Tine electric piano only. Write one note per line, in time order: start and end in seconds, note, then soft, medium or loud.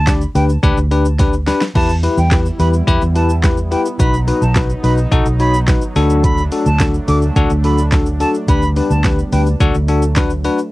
0.07 0.21 D4 medium
0.07 0.22 G4 medium
0.07 0.22 D5 medium
0.35 0.50 D4 medium
0.35 0.50 G4 medium
0.35 0.50 B4 medium
0.63 0.77 D4 loud
0.63 0.78 G4 loud
0.63 0.78 B4 loud
0.91 1.06 D4 medium
0.91 1.06 G4 medium
0.91 1.06 B4 loud
1.19 1.34 D4 loud
1.19 1.34 G4 medium
1.19 1.34 B4 loud
1.47 1.62 D4 medium
1.47 1.62 G4 medium
1.47 1.62 B4 loud
1.75 1.90 E4 loud
1.75 1.90 G4 medium
1.75 1.90 B4 loud
2.03 2.18 E4 medium
2.03 2.18 G4 medium
2.03 2.18 B4 medium
2.31 2.46 E4 medium
2.31 2.46 G4 medium
2.31 2.46 B4 medium
2.59 2.74 E4 medium
2.59 2.74 G4 medium
2.59 2.74 B4 medium
2.87 3.02 E4 loud
2.87 3.02 G4 loud
2.87 3.02 B4 loud
3.15 3.30 E4 medium
3.15 3.30 G4 medium
3.15 3.30 B4 medium
3.43 3.58 E4 medium
3.43 3.58 G4 medium
3.43 3.58 B4 medium
3.71 3.86 E4 medium
3.71 3.86 G4 medium
3.71 3.86 B4 medium
3.99 4.14 D#4 loud
3.99 4.14 F#4 medium
3.99 4.14 B4 loud
4.27 4.42 D#4 medium
4.27 4.42 F#4 medium
4.27 4.42 B4 medium
4.55 4.70 D#4 medium
4.55 4.70 F#4 medium
4.55 4.70 B4 medium
4.83 4.98 D#4 medium
4.83 4.98 F#4 medium
4.83 4.98 B4 medium
5.11 5.26 D#4 loud
5.11 5.26 F#4 loud
5.11 5.26 A4 loud
5.40 5.54 D#4 medium
5.40 5.54 F#4 medium
5.40 5.54 C#5 medium
5.68 5.82 D#4 medium
5.68 5.82 F#4 medium
5.68 5.82 B4 medium
5.96 6.41 D4 loud
5.96 6.41 F#4 medium
5.96 6.41 A4 loud
6.52 6.66 D4 medium
6.52 6.67 F#4 medium
6.52 6.67 A4 medium
6.80 6.94 D4 medium
6.80 6.95 F#4 medium
6.80 6.95 A4 medium
7.08 7.22 D4 medium
7.08 7.23 F#4 medium
7.08 7.23 A4 medium
7.36 7.51 D4 loud
7.36 7.51 F#4 loud
7.36 7.51 A4 loud
7.64 7.79 D4 medium
7.64 7.79 F#4 medium
7.64 7.79 A4 medium
7.92 8.07 D4 medium
7.92 8.07 F#4 medium
7.92 8.07 A4 medium
8.20 8.34 D4 medium
8.20 8.35 F#4 medium
8.20 8.35 A4 medium
8.48 8.63 D4 loud
8.48 8.63 G4 medium
8.48 8.63 B4 loud
8.76 8.91 D4 medium
8.76 8.91 G4 medium
8.76 8.91 B4 medium
9.04 9.19 D4 medium
9.04 9.19 G4 medium
9.04 9.19 B4 medium
9.32 9.47 D4 medium
9.32 9.47 G4 medium
9.32 9.47 B4 medium
9.60 9.75 D4 loud
9.60 9.75 F#4 loud
9.60 9.75 A4 loud
9.88 10.03 D4 loud
9.88 10.03 F#4 medium
9.88 10.03 A4 loud
10.16 10.31 D4 loud
10.16 10.31 F#4 medium
10.16 10.31 B4 loud
10.44 10.59 D4 loud
10.44 10.59 F#4 medium
10.44 10.59 B4 loud